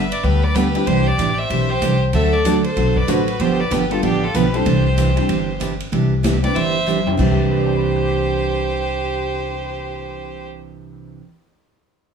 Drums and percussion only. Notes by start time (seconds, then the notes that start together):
0.12 ride
0.24 kick
0.55 kick, hi-hat pedal, ride
0.75 ride
0.87 kick, ride
1.19 kick, hi-hat pedal, ride
1.50 kick, ride
1.82 kick, hi-hat pedal, ride
2.13 kick, ride
2.45 kick, hi-hat pedal, ride
2.64 ride
2.77 kick, ride
2.96 kick
3.08 kick, hi-hat pedal, ride
3.28 ride
3.40 kick, ride
3.71 kick, hi-hat pedal, ride
3.91 ride
4.03 kick, ride
4.34 kick, hi-hat pedal, ride
4.54 ride
4.66 kick, ride
4.98 kick, hi-hat pedal, ride
5.17 ride
5.29 kick, ride
5.61 kick, hi-hat pedal, ride
5.80 ride
5.93 kick, ride
6.24 kick, snare, hi-hat pedal, ride
6.44 ride
6.56 kick, ride
6.87 hi-hat pedal, high tom
7.07 floor tom
7.19 kick, crash
7.38 cymbal swell